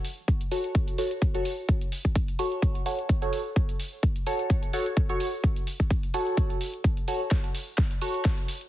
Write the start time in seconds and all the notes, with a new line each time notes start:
0.05 open hi-hat
0.28 kick, closed hi-hat
0.41 closed hi-hat
0.51 F#4 A4 C#5, open hi-hat
0.64 closed hi-hat
0.75 kick, closed hi-hat
0.88 closed hi-hat
0.98 F#4 A4 C#5, open hi-hat
1.11 closed hi-hat
1.22 kick, closed hi-hat
1.34 F#4 A4 C#5, closed hi-hat
1.45 open hi-hat
1.69 kick, closed hi-hat
1.81 closed hi-hat
1.92 open hi-hat
2.05 kick, closed hi-hat
2.16 kick, closed hi-hat
2.28 closed hi-hat
2.39 F#4 A4 C#5, open hi-hat
2.52 closed hi-hat
2.62 kick, closed hi-hat
2.75 closed hi-hat
2.86 F#4 A4 C#5, open hi-hat
2.99 closed hi-hat
3.09 kick, closed hi-hat
3.22 F#4 A4 C#5, closed hi-hat
3.33 open hi-hat
3.56 kick, closed hi-hat
3.69 closed hi-hat
3.80 open hi-hat
4.03 kick, closed hi-hat
4.16 closed hi-hat
4.26 F#4 A4 C#5, open hi-hat
4.39 closed hi-hat
4.50 kick, closed hi-hat
4.63 closed hi-hat
4.73 F#4 A4 C#5, open hi-hat
4.86 closed hi-hat
4.97 kick, closed hi-hat
5.09 F#4 A4 C#5, closed hi-hat
5.20 open hi-hat
5.44 kick, closed hi-hat
5.56 closed hi-hat
5.67 open hi-hat
5.80 kick, closed hi-hat
5.91 kick, closed hi-hat
6.03 closed hi-hat
6.14 F#4 A4 C#5, open hi-hat
6.27 closed hi-hat
6.37 kick, closed hi-hat
6.50 closed hi-hat
6.61 open hi-hat
6.74 closed hi-hat
6.84 kick, closed hi-hat
6.97 closed hi-hat
7.08 F#4 A4 C#5, open hi-hat
7.31 kick, snare, closed hi-hat
7.44 closed hi-hat
7.55 open hi-hat
7.78 kick, snare, closed hi-hat
7.91 closed hi-hat
8.01 F#4 A4 C#5, open hi-hat
8.14 closed hi-hat
8.25 kick, snare, closed hi-hat
8.38 closed hi-hat
8.48 open hi-hat
8.61 closed hi-hat